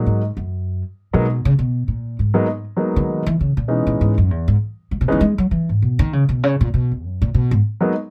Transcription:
Already playing: F#3 G#3 A#3 D#4
0.06 G#2
0.37 F#2
1.13 B2 F#3 G#3 A#3 B3 D#4
1.45 C#3
1.59 B2
1.88 A#2
2.19 G#2
2.34 F#3 G#3 A#3 B3 D#4
2.77 F#3 G#3 A#3 B3 D#4
2.96 D3
3.10 D#3
3.26 E3
3.41 C#3
3.57 A#2
3.68 B2 E3 G#3 B3 C#4 D#4
3.87 A#2
4.01 G#2
4.18 F#2
4.31 E2
4.48 G#2
4.91 G#2
5.01 B2
5.08 E3 G#3 B3 C#4 D#4
5.12 D#3
5.21 G#3
5.38 F#3
5.51 E3
5.69 G#2
5.82 B2
5.99 D#3
6.13 C#3
6.29 B2
6.43 C#3
6.61 A#2
6.74 B2
6.92 D#2
7.04 F#2
7.22 A#2
7.34 B2
7.51 G#2
7.81 F#3 G#3 A#3 B3 D#4

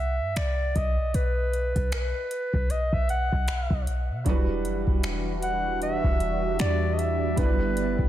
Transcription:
Already playing: C2 E5
0.20 G2
0.36 C2 D5, finger snap, closed hi-hat
0.75 B1 D#5, kick, closed hi-hat
1.14 B1 B4, closed hi-hat
1.53 closed hi-hat
1.75 B1, kick, closed hi-hat
1.92 B4, finger snap, closed hi-hat
2.31 closed hi-hat
2.53 B1, kick
2.70 D#5, closed hi-hat
2.92 B1 E5, kick
3.09 F#5, closed hi-hat
3.32 B1, kick
3.48 finger snap, closed hi-hat
3.70 B1, kick
3.87 closed hi-hat
4.10 B2
4.24 E1 E3 F#3 G3 D4 E4 F#4, kick, closed hi-hat
4.29 G3 B4
4.65 F#1, closed hi-hat
4.87 E1, kick
5.03 finger snap, closed hi-hat
5.42 F#5, closed hi-hat
5.82 E5, closed hi-hat
6.04 E1, kick
6.20 closed hi-hat
6.59 E2 D5, finger snap, closed hi-hat
6.94 D#5
6.99 E5, closed hi-hat
7.36 G1 D3 G3 B3 D4 E4 B4, kick, closed hi-hat
7.41 B4
7.77 closed hi-hat
7.99 G1, kick

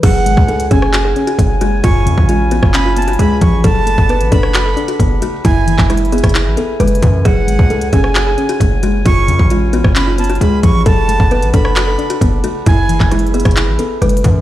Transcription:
0.03 F#1 F#3 G#4 C#5 F#5 G#5, kick, closed hi-hat, crash
0.26 G#1 G#3, closed hi-hat
0.37 C#2, kick
0.48 A3 A4, closed hi-hat
0.60 closed hi-hat
0.71 F#1 C#4 G#4 G#5, kick, closed hi-hat
0.82 cross-stick
0.93 F#4, clap, closed hi-hat
1.05 G#4
1.16 C#4, closed hi-hat
1.27 F#4, closed hi-hat
1.38 F#1 A3, kick, closed hi-hat
1.61 G#3 F#4, closed hi-hat
1.83 F#1 F#2 F4 F5 B5 C#6, kick, closed hi-hat
2.06 F#2 C#3, closed hi-hat
2.18 A1, kick
2.29 G#3 F4, closed hi-hat
2.51 B3 F#4, closed hi-hat
2.63 F#1, kick, cross-stick
2.74 C#4 B5, clap, closed hi-hat
2.86 F4
2.96 B3 A5, closed hi-hat
3.02 closed hi-hat
3.08 F#4, closed hi-hat
3.13 closed hi-hat
3.19 C#2 G#3 G#4 B5, closed hi-hat
3.41 A1 F3 C#6, kick, closed hi-hat
3.64 F#1 F#3 A4 D5 F#5 A5, kick, closed hi-hat
3.87 A3, closed hi-hat
3.98 F#1, kick
4.09 B3 B4, closed hi-hat
4.21 A1, closed hi-hat
4.32 F#1 D4 A4 B5, kick, closed hi-hat
4.43 cross-stick
4.54 F#4, clap, closed hi-hat
4.66 A4
4.77 D4, closed hi-hat
4.88 F#4, closed hi-hat
5.00 F#1 B3, kick, closed hi-hat
5.22 A3 F#4, closed hi-hat
5.44 F#1 F#2 E4 B4 E5 G#5, kick, closed hi-hat
5.67 E3, closed hi-hat
5.78 F#1, kick, clap
5.90 G#3 E4, cross-stick, closed hi-hat
5.97 closed hi-hat
6.05 closed hi-hat
6.12 B3 G#4, closed hi-hat
6.18 closed hi-hat
6.24 F#1, kick, cross-stick, closed hi-hat
6.29 closed hi-hat
6.35 E4, clap, closed hi-hat
6.46 A1
6.57 B3 A4, closed hi-hat
6.80 F#1 G#3 B4, closed hi-hat
6.88 closed hi-hat
6.95 closed hi-hat
7.02 F#2 E3, kick, closed hi-hat
7.25 F#1 F#3 G#4 C#5 F#5, kick, closed hi-hat
7.48 G#1 G#3, closed hi-hat
7.59 C#2, kick
7.70 A3 A4, closed hi-hat
7.81 closed hi-hat
7.93 F#1 C#4 G#4 G#5, kick, closed hi-hat
8.04 cross-stick
8.15 F#4, clap, closed hi-hat
8.27 G#4
8.38 C#4, closed hi-hat
8.49 F#4, closed hi-hat
8.60 F#1 A3, kick, closed hi-hat
8.83 G#3 F#4, closed hi-hat
9.05 F#1 F#2 F4 C#5 F5 B5 C#6, kick, closed hi-hat
9.28 F#2 C#3, closed hi-hat
9.39 A1, kick
9.50 G#3 F4, closed hi-hat
9.73 B3 F#4, closed hi-hat
9.84 F#1, kick, cross-stick
9.96 C#4 B5, clap, closed hi-hat
10.07 F4
10.18 B3 A5, closed hi-hat
10.24 closed hi-hat
10.30 F#4, closed hi-hat
10.35 closed hi-hat
10.41 C#2 G#3 G#4 B5, closed hi-hat
10.63 A1 F3 C#6, kick, closed hi-hat
10.86 F#1 F#3 A4 D5 F#5 A5, kick, closed hi-hat
11.09 A3, closed hi-hat
11.20 F#1, kick
11.31 B3 B4, closed hi-hat
11.42 A1, closed hi-hat
11.54 F#1 D4 A4 B5, kick, closed hi-hat
11.65 cross-stick
11.76 F#4, clap, closed hi-hat
11.88 A4
11.98 D4, closed hi-hat
12.10 F#4, closed hi-hat
12.21 F#1 B3, kick, closed hi-hat
12.44 A3 F#4, closed hi-hat
12.66 F#1 F#2 E4 G#4 B4 E5 G#5, kick, closed hi-hat
12.89 E3, closed hi-hat
13.00 F#1, kick, clap
13.11 G#3 E4, cross-stick, closed hi-hat
13.19 closed hi-hat
13.27 closed hi-hat
13.34 B3 G#4, closed hi-hat
13.40 closed hi-hat
13.45 F#1, kick, cross-stick, closed hi-hat
13.51 closed hi-hat
13.56 E4, clap, closed hi-hat
13.68 A1
13.79 B3 A4, closed hi-hat
14.02 F#1 G#3 B4, closed hi-hat
14.09 closed hi-hat
14.17 closed hi-hat
14.24 F#2 E3, kick, closed hi-hat

